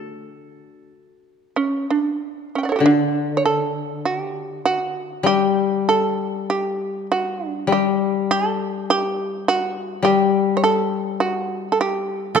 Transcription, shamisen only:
Already playing: D5
1.56 C#4
1.90 D4
2.55 C#4 G5
2.63 D5 F#5
2.69 A4 C#5
2.76 F#4 G4
2.86 D4
3.37 C#5
3.46 A4
4.05 F#4
4.18 G4
4.65 F#4
5.26 G4
5.89 A4
6.50 G4
7.12 F#4
7.49 D4
7.72 G4
8.31 A4
8.90 G4
9.48 F#4
10.05 G4
10.57 C#5
10.64 A4
11.20 F#4
11.72 A4
11.81 G4
12.36 A4

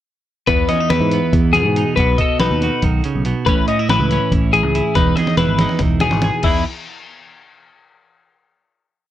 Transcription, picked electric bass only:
0.48 E2
0.90 E2
1.01 G#2
1.33 E2
1.65 G#2
1.97 B1
2.40 B1
2.51 D#2
2.83 B1
3.15 B1
3.47 A1
3.89 A1
4.00 C#2
4.32 A1
4.63 C#2
4.96 E1
5.37 E1
5.47 G#1
5.80 E1
6.12 G#1
6.44 E2

